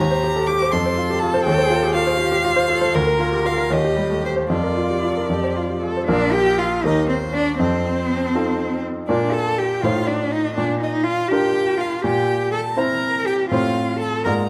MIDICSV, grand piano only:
0, 0, Header, 1, 2, 480
1, 0, Start_track
1, 0, Key_signature, -2, "major"
1, 0, Tempo, 493016
1, 1421, Time_signature, 6, 3, 24, 8
1, 2873, Tempo, 522193
1, 5753, Tempo, 501253
1, 7193, Tempo, 493421
1, 13910, End_track
2, 0, Start_track
2, 0, Title_t, "Grand piano"
2, 0, Program_c, 0, 0
2, 0, Control_c, 0, 64, 127
2, 0, Note_on_c, 0, 39, 69
2, 11, Control_c, 0, 64, 0
2, 108, Note_on_c, 0, 72, 51
2, 173, Control_c, 0, 64, 127
2, 231, Note_on_c, 0, 67, 51
2, 301, Note_off_c, 0, 72, 0
2, 348, Note_on_c, 0, 69, 47
2, 421, Note_off_c, 0, 67, 0
2, 468, Note_off_c, 0, 69, 0
2, 474, Note_on_c, 0, 67, 59
2, 605, Note_on_c, 0, 72, 53
2, 661, Note_off_c, 0, 67, 0
2, 679, Note_off_c, 0, 39, 0
2, 712, Note_on_c, 0, 41, 60
2, 715, Note_off_c, 0, 72, 0
2, 724, Control_c, 0, 64, 0
2, 834, Note_on_c, 0, 72, 52
2, 860, Control_c, 0, 64, 127
2, 948, Note_on_c, 0, 65, 49
2, 1019, Note_off_c, 0, 72, 0
2, 1074, Note_on_c, 0, 67, 51
2, 1136, Note_off_c, 0, 65, 0
2, 1187, Note_off_c, 0, 67, 0
2, 1193, Note_on_c, 0, 65, 48
2, 1303, Note_on_c, 0, 72, 62
2, 1379, Note_off_c, 0, 65, 0
2, 1403, Note_off_c, 0, 41, 0
2, 1422, Note_off_c, 0, 72, 0
2, 1424, Note_on_c, 0, 39, 73
2, 1439, Control_c, 0, 64, 0
2, 1537, Note_on_c, 0, 72, 59
2, 1605, Control_c, 0, 64, 127
2, 1657, Note_on_c, 0, 65, 57
2, 1733, Note_off_c, 0, 72, 0
2, 1779, Note_on_c, 0, 67, 58
2, 1853, Note_off_c, 0, 65, 0
2, 1894, Note_on_c, 0, 65, 59
2, 1902, Note_off_c, 0, 67, 0
2, 2014, Note_on_c, 0, 72, 54
2, 2092, Note_off_c, 0, 65, 0
2, 2127, Note_on_c, 0, 65, 62
2, 2212, Note_off_c, 0, 72, 0
2, 2254, Note_on_c, 0, 67, 50
2, 2328, Note_off_c, 0, 65, 0
2, 2380, Note_off_c, 0, 67, 0
2, 2380, Note_on_c, 0, 65, 64
2, 2495, Note_on_c, 0, 72, 67
2, 2576, Note_off_c, 0, 65, 0
2, 2622, Note_on_c, 0, 65, 54
2, 2695, Note_off_c, 0, 72, 0
2, 2739, Note_on_c, 0, 72, 68
2, 2820, Note_off_c, 0, 65, 0
2, 2835, Note_off_c, 0, 39, 0
2, 2867, Note_off_c, 0, 72, 0
2, 2873, Note_on_c, 0, 38, 71
2, 2890, Control_c, 0, 64, 0
2, 2981, Note_on_c, 0, 70, 55
2, 3056, Control_c, 0, 64, 127
2, 3097, Note_on_c, 0, 65, 56
2, 3173, Note_off_c, 0, 70, 0
2, 3221, Note_on_c, 0, 67, 49
2, 3291, Note_off_c, 0, 65, 0
2, 3333, Note_on_c, 0, 65, 59
2, 3341, Note_off_c, 0, 67, 0
2, 3450, Note_on_c, 0, 70, 56
2, 3528, Note_off_c, 0, 65, 0
2, 3559, Note_off_c, 0, 38, 0
2, 3561, Note_on_c, 0, 39, 65
2, 3575, Note_off_c, 0, 70, 0
2, 3599, Control_c, 0, 64, 0
2, 3696, Note_on_c, 0, 67, 53
2, 3733, Control_c, 0, 64, 127
2, 3806, Note_on_c, 0, 55, 50
2, 3891, Note_off_c, 0, 67, 0
2, 3929, Note_on_c, 0, 57, 41
2, 4006, Note_off_c, 0, 55, 0
2, 4056, Note_off_c, 0, 57, 0
2, 4056, Note_on_c, 0, 67, 42
2, 4172, Note_on_c, 0, 72, 50
2, 4255, Note_off_c, 0, 67, 0
2, 4275, Note_off_c, 0, 39, 0
2, 4293, Note_on_c, 0, 41, 63
2, 4301, Note_off_c, 0, 72, 0
2, 4325, Control_c, 0, 64, 0
2, 4423, Note_on_c, 0, 70, 42
2, 4477, Control_c, 0, 64, 127
2, 4549, Note_on_c, 0, 65, 47
2, 4621, Note_off_c, 0, 70, 0
2, 4670, Note_on_c, 0, 67, 41
2, 4745, Note_off_c, 0, 65, 0
2, 4789, Note_on_c, 0, 65, 43
2, 4793, Note_off_c, 0, 67, 0
2, 4914, Note_on_c, 0, 70, 41
2, 4984, Note_off_c, 0, 65, 0
2, 5006, Note_off_c, 0, 41, 0
2, 5029, Note_on_c, 0, 41, 53
2, 5035, Note_off_c, 0, 70, 0
2, 5053, Control_c, 0, 64, 0
2, 5156, Note_on_c, 0, 72, 44
2, 5197, Control_c, 0, 64, 127
2, 5274, Note_on_c, 0, 65, 43
2, 5348, Note_off_c, 0, 72, 0
2, 5401, Note_on_c, 0, 67, 33
2, 5467, Note_off_c, 0, 65, 0
2, 5516, Note_on_c, 0, 65, 36
2, 5519, Note_off_c, 0, 67, 0
2, 5646, Note_on_c, 0, 72, 44
2, 5706, Note_off_c, 0, 65, 0
2, 5728, Note_off_c, 0, 41, 0
2, 5749, Note_on_c, 0, 58, 56
2, 5754, Note_on_c, 0, 34, 71
2, 5757, Note_on_c, 0, 65, 57
2, 5758, Note_off_c, 0, 72, 0
2, 5764, Note_on_c, 0, 70, 51
2, 5770, Control_c, 0, 64, 0
2, 5912, Control_c, 0, 64, 127
2, 6431, Note_off_c, 0, 58, 0
2, 6436, Note_off_c, 0, 65, 0
2, 6439, Note_off_c, 0, 70, 0
2, 6451, Note_off_c, 0, 34, 0
2, 6476, Note_on_c, 0, 58, 49
2, 6482, Note_on_c, 0, 39, 62
2, 6485, Note_on_c, 0, 67, 50
2, 6490, Note_on_c, 0, 70, 53
2, 6492, Control_c, 0, 64, 0
2, 6649, Control_c, 0, 64, 127
2, 7157, Note_off_c, 0, 58, 0
2, 7161, Note_off_c, 0, 67, 0
2, 7164, Note_off_c, 0, 70, 0
2, 7177, Note_off_c, 0, 39, 0
2, 7199, Note_on_c, 0, 41, 73
2, 7211, Control_c, 0, 64, 0
2, 7399, Control_c, 0, 64, 127
2, 7900, Note_off_c, 0, 41, 0
2, 7935, Note_on_c, 0, 63, 45
2, 7937, Note_on_c, 0, 65, 46
2, 7941, Note_on_c, 0, 69, 58
2, 8615, Note_off_c, 0, 63, 0
2, 8616, Note_off_c, 0, 65, 0
2, 8618, Note_off_c, 0, 69, 0
2, 8652, Note_on_c, 0, 62, 44
2, 8654, Note_on_c, 0, 46, 70
2, 8663, Note_on_c, 0, 65, 51
2, 8665, Control_c, 0, 64, 0
2, 8667, Note_on_c, 0, 70, 53
2, 8800, Control_c, 0, 64, 127
2, 9336, Note_off_c, 0, 62, 0
2, 9342, Note_off_c, 0, 65, 0
2, 9344, Note_off_c, 0, 70, 0
2, 9354, Note_off_c, 0, 46, 0
2, 9377, Note_on_c, 0, 45, 63
2, 9380, Note_on_c, 0, 63, 47
2, 9385, Note_on_c, 0, 65, 44
2, 9391, Control_c, 0, 64, 0
2, 9392, Note_on_c, 0, 72, 43
2, 9564, Control_c, 0, 64, 127
2, 10056, Note_off_c, 0, 63, 0
2, 10058, Note_off_c, 0, 65, 0
2, 10061, Note_off_c, 0, 72, 0
2, 10071, Note_off_c, 0, 45, 0
2, 10101, Note_on_c, 0, 46, 62
2, 10109, Control_c, 0, 64, 0
2, 10291, Control_c, 0, 64, 127
2, 10788, Note_off_c, 0, 46, 0
2, 10818, Note_on_c, 0, 62, 53
2, 10820, Note_on_c, 0, 65, 50
2, 10828, Note_on_c, 0, 70, 56
2, 11491, Note_off_c, 0, 62, 0
2, 11493, Note_off_c, 0, 65, 0
2, 11497, Note_off_c, 0, 70, 0
2, 11524, Note_on_c, 0, 46, 70
2, 11540, Control_c, 0, 64, 0
2, 11674, Control_c, 0, 64, 127
2, 12216, Note_off_c, 0, 46, 0
2, 12230, Note_on_c, 0, 60, 44
2, 12238, Note_on_c, 0, 64, 52
2, 12239, Note_on_c, 0, 72, 54
2, 12912, Note_off_c, 0, 60, 0
2, 12916, Note_off_c, 0, 64, 0
2, 12916, Note_off_c, 0, 72, 0
2, 12957, Note_on_c, 0, 45, 60
2, 12957, Note_on_c, 0, 60, 46
2, 12963, Note_on_c, 0, 65, 51
2, 12970, Note_on_c, 0, 72, 47
2, 12974, Control_c, 0, 64, 0
2, 13116, Control_c, 0, 64, 127
2, 13636, Note_off_c, 0, 60, 0
2, 13639, Note_off_c, 0, 65, 0
2, 13642, Note_off_c, 0, 72, 0
2, 13653, Note_off_c, 0, 45, 0
2, 13682, Note_on_c, 0, 44, 61
2, 13686, Note_on_c, 0, 58, 43
2, 13690, Note_on_c, 0, 65, 45
2, 13691, Control_c, 0, 64, 0
2, 13693, Note_on_c, 0, 74, 44
2, 13847, Control_c, 0, 64, 127
2, 13910, Note_off_c, 0, 44, 0
2, 13910, Note_off_c, 0, 58, 0
2, 13910, Note_off_c, 0, 65, 0
2, 13910, Note_off_c, 0, 74, 0
2, 13910, End_track
0, 0, End_of_file